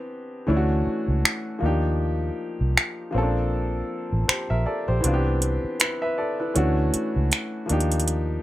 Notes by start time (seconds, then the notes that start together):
Already playing: E3 B3 C4 D4 G4
0.47 D2 E3 A3 C#4 D4 E4
0.57 F#4
0.87 muted fingered electric bass stroke
1.08 C#2
1.25 finger snap
1.59 D#2 F3 A#3 D4
1.64 D#4 G4
2.61 C2
2.77 finger snap
3.11 A#1 F3 A#3 C4
3.16 C#4 A4
3.22 D4
4.13 A1
4.28 G4 C5, finger snap
4.50 A#1 A#4 E5
4.66 A4 D5
4.88 A#1 G4 C5
5.01 C2 E3 B3 C4, closed hi-hat
5.06 D4 F4
5.14 G4
5.42 closed hi-hat
5.64 muted fingered electric bass stroke
5.80 E4 B4, finger snap, closed hi-hat
6.02 B4 E5
6.18 A4 D5
6.40 E4 B4
6.54 D2 E3 A3 C#4 D4 F#4, closed hi-hat
6.94 closed hi-hat
7.16 C#2
7.32 finger snap, closed hi-hat
7.66 F3 A#3 D4, closed hi-hat
7.70 D#2 D#4 G4
7.80 closed hi-hat
7.92 closed hi-hat
8.00 closed hi-hat
8.08 closed hi-hat